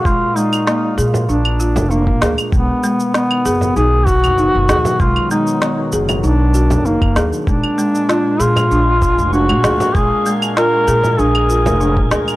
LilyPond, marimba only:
\new Staff \with { instrumentName = "Marimba" } { \time 4/4 \tempo 4 = 97 aes8 aes16 r16 bes8 aes'8 d'8 f'8 d'8 aes'8 | aes8 aes16 r16 ces'8 aes'8 ees'8 ges'8 ees'8 aes'8 | aes8 aes16 r16 ces'8 aes'8 ees'8 ges'8 ees'8 aes'8 | aes8 aes16 r16 f'16 r16 aes'8 d'8 f'8 d'8 aes'8 |
aes8 aes16 r16 f'16 r16 aes'8 d'8 f'8 d'8 aes'8 | }